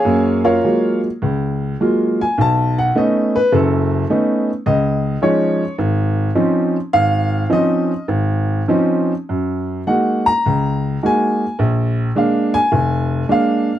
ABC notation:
X:1
M:4/4
L:1/8
Q:"Swing" 1/4=104
K:Db
V:1 name="Upright piano"
[Adfa] [FBdf]2 z4 a | =a g e _c =A2 z2 | e2 d2 z4 | f2 e2 z4 |
[K:F#] z2 f a3 g2 | z2 e g3 e2 |]
V:2 name="Upright piano"
[G,,B,]2 [G,A,B,F] z D,,2 [G,A,B,F] z | _C,,2 [=A,_CDE] z [G,,,G,,]2 [A,CDE] z | D,,2 [F,A,DE] z A,,,2 [F,CDE] z | A,,,2 [F,CDE] z A,,,2 [F,CDE] z |
[K:F#] F,,2 [G,A,DF] z C,,2 [G,A,DF] z | A,,,2 [G,A,=D] z E,,,2 [G,A,D] z |]